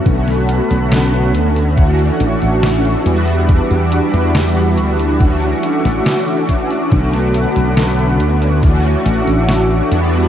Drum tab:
HH |xxxxxxxxxxxxxxxx|xxxxxxxxxxxxxxxx|xxxxxxxxxxxxxxxx|
TB |xx-xxx-xxx-xxx-x|xx-xxx-xxx-xxx-x|xx-xxx-xxx-xxx-x|
SD |-o--o-------o---|----o------oo---|-o--o-------o---|
BD |o-------o-------|o-------o-----o-|o-------o-------|